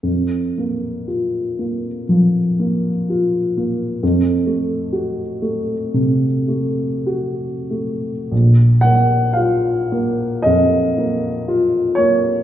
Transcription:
0, 0, Header, 1, 2, 480
1, 0, Start_track
1, 0, Tempo, 1048951
1, 18, Time_signature, 4, 2, 24, 8
1, 497, Tempo, 996678
1, 1457, Tempo, 927357
1, 2417, Tempo, 1001669
1, 2897, Tempo, 1132075
1, 3377, Tempo, 1244813
1, 3857, Tempo, 1067616
1, 4817, Tempo, 1020408
1, 5751, End_track
2, 0, Start_track
2, 0, Title_t, "Grand piano"
2, 0, Program_c, 0, 0
2, 14, Note_on_c, 0, 41, 32
2, 115, Control_c, 0, 64, 127
2, 266, Note_on_c, 0, 58, 33
2, 493, Note_on_c, 0, 65, 32
2, 641, Note_off_c, 0, 58, 0
2, 739, Note_on_c, 0, 58, 31
2, 875, Note_off_c, 0, 65, 0
2, 953, Note_off_c, 0, 41, 0
2, 980, Note_on_c, 0, 53, 37
2, 1123, Note_off_c, 0, 58, 0
2, 1224, Note_on_c, 0, 58, 35
2, 1365, Note_off_c, 0, 53, 0
2, 1466, Note_on_c, 0, 65, 40
2, 1610, Note_off_c, 0, 58, 0
2, 1713, Note_on_c, 0, 58, 37
2, 1854, Note_off_c, 0, 65, 0
2, 1947, Note_off_c, 0, 58, 0
2, 1950, Note_on_c, 0, 41, 47
2, 1952, Control_c, 0, 64, 0
2, 2030, Control_c, 0, 64, 127
2, 2173, Note_on_c, 0, 57, 37
2, 2412, Note_on_c, 0, 66, 40
2, 2554, Note_off_c, 0, 57, 0
2, 2650, Note_on_c, 0, 57, 46
2, 2795, Note_off_c, 0, 66, 0
2, 2881, Note_off_c, 0, 41, 0
2, 2899, Note_on_c, 0, 48, 43
2, 3033, Note_off_c, 0, 57, 0
2, 3128, Note_on_c, 0, 57, 36
2, 3276, Note_off_c, 0, 48, 0
2, 3376, Note_on_c, 0, 66, 41
2, 3523, Note_off_c, 0, 57, 0
2, 3623, Note_on_c, 0, 57, 30
2, 3772, Note_off_c, 0, 66, 0
2, 3856, Note_off_c, 0, 57, 0
2, 3858, Note_on_c, 0, 34, 36
2, 3865, Control_c, 0, 64, 0
2, 3949, Control_c, 0, 64, 127
2, 4081, Note_on_c, 0, 78, 67
2, 4095, Note_on_c, 0, 58, 28
2, 4315, Note_on_c, 0, 77, 45
2, 4326, Note_off_c, 0, 78, 0
2, 4331, Note_on_c, 0, 65, 27
2, 4477, Note_off_c, 0, 58, 0
2, 4579, Note_on_c, 0, 58, 33
2, 4720, Note_off_c, 0, 65, 0
2, 4800, Note_off_c, 0, 34, 0
2, 4806, Note_on_c, 0, 75, 64
2, 4809, Note_off_c, 0, 77, 0
2, 4821, Note_on_c, 0, 41, 36
2, 4969, Note_off_c, 0, 58, 0
2, 5065, Note_on_c, 0, 58, 28
2, 5205, Note_off_c, 0, 41, 0
2, 5303, Note_on_c, 0, 65, 36
2, 5442, Note_off_c, 0, 58, 0
2, 5524, Note_on_c, 0, 73, 60
2, 5530, Note_off_c, 0, 75, 0
2, 5539, Note_on_c, 0, 58, 30
2, 5684, Note_off_c, 0, 65, 0
2, 5751, Note_off_c, 0, 58, 0
2, 5751, Note_off_c, 0, 73, 0
2, 5751, End_track
0, 0, End_of_file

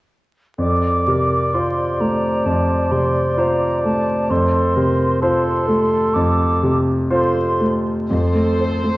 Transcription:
0, 0, Header, 1, 8, 480
1, 0, Start_track
1, 0, Key_signature, -1, "major"
1, 0, Tempo, 947867
1, 302, Time_signature, 4, 2, 24, 8
1, 779, Tempo, 921659
1, 3179, Tempo, 981997
1, 4560, End_track
2, 0, Start_track
2, 0, Title_t, "Flute"
2, 0, Program_c, 0, 73
2, 302, Note_on_c, 0, 86, 27
2, 777, Note_on_c, 0, 84, 29
2, 784, Note_off_c, 0, 86, 0
2, 1021, Note_on_c, 0, 82, 28
2, 1029, Note_off_c, 0, 84, 0
2, 1256, Note_on_c, 0, 81, 28
2, 1264, Note_off_c, 0, 82, 0
2, 1497, Note_on_c, 0, 84, 32
2, 1505, Note_off_c, 0, 81, 0
2, 1740, Note_on_c, 0, 82, 32
2, 1748, Note_off_c, 0, 84, 0
2, 1975, Note_off_c, 0, 82, 0
2, 1978, Note_on_c, 0, 81, 33
2, 2221, Note_on_c, 0, 84, 35
2, 2228, Note_off_c, 0, 81, 0
2, 2689, Note_off_c, 0, 84, 0
2, 2692, Note_on_c, 0, 84, 38
2, 3173, Note_on_c, 0, 86, 39
2, 3180, Note_off_c, 0, 84, 0
2, 3509, Note_off_c, 0, 86, 0
2, 3650, Note_on_c, 0, 84, 38
2, 3958, Note_off_c, 0, 84, 0
2, 4560, End_track
3, 0, Start_track
3, 0, Title_t, "Cor anglais"
3, 0, Program_c, 1, 69
3, 304, Note_on_c, 1, 74, 28
3, 2216, Note_on_c, 1, 72, 30
3, 2224, Note_off_c, 1, 74, 0
3, 2692, Note_off_c, 1, 72, 0
3, 2695, Note_on_c, 1, 69, 38
3, 3497, Note_off_c, 1, 69, 0
3, 3655, Note_on_c, 1, 72, 36
3, 3961, Note_off_c, 1, 72, 0
3, 4560, End_track
4, 0, Start_track
4, 0, Title_t, "Violin section"
4, 0, Program_c, 2, 48
4, 4140, Note_on_c, 2, 72, 47
4, 4560, Note_off_c, 2, 72, 0
4, 4560, End_track
5, 0, Start_track
5, 0, Title_t, "Clarinet"
5, 0, Program_c, 3, 71
5, 303, Note_on_c, 3, 69, 31
5, 526, Note_off_c, 3, 69, 0
5, 545, Note_on_c, 3, 70, 28
5, 782, Note_on_c, 3, 72, 29
5, 790, Note_off_c, 3, 70, 0
5, 2218, Note_on_c, 3, 69, 38
5, 2226, Note_off_c, 3, 72, 0
5, 2455, Note_on_c, 3, 70, 36
5, 2463, Note_off_c, 3, 69, 0
5, 2693, Note_off_c, 3, 70, 0
5, 2697, Note_on_c, 3, 72, 40
5, 2932, Note_on_c, 3, 69, 40
5, 2940, Note_off_c, 3, 72, 0
5, 3511, Note_off_c, 3, 69, 0
5, 3650, Note_on_c, 3, 69, 35
5, 3958, Note_off_c, 3, 69, 0
5, 4560, End_track
6, 0, Start_track
6, 0, Title_t, "Viola section"
6, 0, Program_c, 4, 48
6, 4140, Note_on_c, 4, 69, 36
6, 4560, Note_off_c, 4, 69, 0
6, 4560, End_track
7, 0, Start_track
7, 0, Title_t, "Grand piano"
7, 0, Program_c, 5, 0
7, 295, Note_on_c, 5, 41, 31
7, 404, Control_c, 5, 64, 127
7, 544, Note_on_c, 5, 48, 24
7, 782, Note_on_c, 5, 72, 26
7, 783, Note_on_c, 5, 65, 25
7, 924, Note_off_c, 5, 48, 0
7, 999, Note_off_c, 5, 72, 0
7, 1000, Note_off_c, 5, 65, 0
7, 1020, Note_on_c, 5, 57, 24
7, 1231, Note_off_c, 5, 41, 0
7, 1257, Note_on_c, 5, 41, 28
7, 1398, Note_off_c, 5, 57, 0
7, 1495, Note_on_c, 5, 48, 26
7, 1734, Note_on_c, 5, 65, 28
7, 1739, Note_on_c, 5, 72, 31
7, 1881, Note_off_c, 5, 48, 0
7, 1956, Note_off_c, 5, 65, 0
7, 1958, Note_off_c, 5, 72, 0
7, 1981, Note_on_c, 5, 57, 27
7, 2196, Note_off_c, 5, 41, 0
7, 2217, Note_on_c, 5, 41, 38
7, 2225, Control_c, 5, 64, 0
7, 2297, Control_c, 5, 64, 127
7, 2362, Note_off_c, 5, 57, 0
7, 2460, Note_on_c, 5, 48, 29
7, 2700, Note_on_c, 5, 65, 33
7, 2701, Note_on_c, 5, 72, 35
7, 2840, Note_off_c, 5, 48, 0
7, 2916, Note_off_c, 5, 65, 0
7, 2917, Note_off_c, 5, 72, 0
7, 2936, Note_on_c, 5, 57, 33
7, 3158, Note_off_c, 5, 41, 0
7, 3182, Note_on_c, 5, 41, 41
7, 3320, Note_off_c, 5, 57, 0
7, 3416, Note_on_c, 5, 48, 32
7, 3647, Note_on_c, 5, 65, 32
7, 3650, Note_on_c, 5, 72, 35
7, 3800, Note_off_c, 5, 48, 0
7, 3876, Note_off_c, 5, 65, 0
7, 3877, Note_off_c, 5, 72, 0
7, 3892, Note_on_c, 5, 57, 30
7, 4124, Note_off_c, 5, 41, 0
7, 4135, Note_on_c, 5, 41, 35
7, 4138, Note_off_c, 5, 57, 0
7, 4150, Control_c, 5, 64, 0
7, 4235, Control_c, 5, 64, 127
7, 4253, Note_on_c, 5, 57, 25
7, 4376, Note_on_c, 5, 72, 24
7, 4447, Note_off_c, 5, 57, 0
7, 4494, Note_on_c, 5, 57, 28
7, 4560, Note_off_c, 5, 41, 0
7, 4560, Note_off_c, 5, 57, 0
7, 4560, Note_off_c, 5, 72, 0
7, 4560, End_track
8, 0, Start_track
8, 0, Title_t, "Cello section"
8, 0, Program_c, 6, 48
8, 4136, Note_on_c, 6, 41, 38
8, 4524, Note_off_c, 6, 41, 0
8, 4560, End_track
0, 0, End_of_file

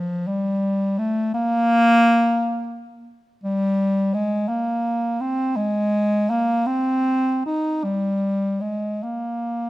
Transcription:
0, 0, Header, 1, 2, 480
1, 0, Start_track
1, 0, Tempo, 705053
1, 917, Time_signature, 6, 3, 24, 8
1, 3308, Tempo, 727273
1, 4268, Tempo, 765306
1, 5708, Tempo, 886263
1, 6296, End_track
2, 0, Start_track
2, 0, Title_t, "Bass clarinet"
2, 0, Program_c, 0, 71
2, 0, Note_on_c, 0, 53, 92
2, 186, Note_on_c, 0, 55, 101
2, 196, Note_off_c, 0, 53, 0
2, 670, Note_on_c, 0, 57, 96
2, 680, Note_off_c, 0, 55, 0
2, 908, Note_off_c, 0, 57, 0
2, 912, Note_on_c, 0, 58, 127
2, 2086, Note_off_c, 0, 58, 0
2, 2337, Note_on_c, 0, 55, 107
2, 2817, Note_on_c, 0, 56, 114
2, 2827, Note_off_c, 0, 55, 0
2, 3050, Note_on_c, 0, 58, 97
2, 3061, Note_off_c, 0, 56, 0
2, 3537, Note_on_c, 0, 60, 106
2, 3547, Note_off_c, 0, 58, 0
2, 3769, Note_on_c, 0, 56, 118
2, 3779, Note_off_c, 0, 60, 0
2, 4257, Note_on_c, 0, 58, 109
2, 4267, Note_off_c, 0, 56, 0
2, 4487, Note_on_c, 0, 60, 109
2, 4496, Note_off_c, 0, 58, 0
2, 4981, Note_off_c, 0, 60, 0
2, 4986, Note_on_c, 0, 63, 96
2, 5223, Note_on_c, 0, 55, 98
2, 5232, Note_off_c, 0, 63, 0
2, 5707, Note_on_c, 0, 56, 80
2, 5715, Note_off_c, 0, 55, 0
2, 5937, Note_on_c, 0, 58, 79
2, 5945, Note_off_c, 0, 56, 0
2, 6296, Note_off_c, 0, 58, 0
2, 6296, End_track
0, 0, End_of_file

